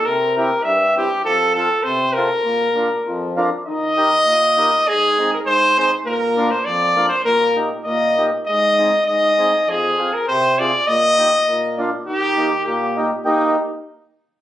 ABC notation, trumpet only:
X:1
M:2/4
L:1/16
Q:1/4=100
K:Bb
V:1 name="Trumpet"
B2 B2 =e2 G2 | A2 A2 c2 B2- | B6 z2 | [K:Eb] e8 |
A3 B c2 c2 | B3 c d3 c | B2 z2 e3 z | e4 e4 |
A3 B c2 d2 | e6 z2 | G4 G3 z | E2 z6 |]